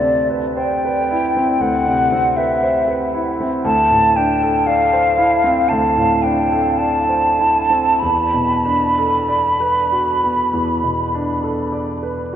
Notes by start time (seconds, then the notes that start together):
Already playing: D2 C3 D5
0.00 C4
0.30 B4
0.56 C5 G5
0.85 B4
1.11 E4
1.37 C4
1.60 D2 F#5
1.86 C3
2.12 C4
2.37 B4 E5
2.63 C5
2.88 B4
3.15 E4
3.40 C4
3.65 D2 A5
3.91 A2
4.16 D4 G5
4.43 A4
4.67 D5 F5
4.93 C5
5.18 E4
5.44 C4
5.69 D2 A5
5.97 A2
6.23 D4 G5
6.52 A4
6.78 D5 A5
7.09 C5
7.39 E4
7.70 C4
8.00 E2 B5
8.34 B2
8.65 D4
8.98 A4
9.29 D5
9.60 B4
9.92 F#4
10.24 B3
10.53 E2
10.84 B2
11.15 D4
11.44 A4
11.72 D5
12.03 B4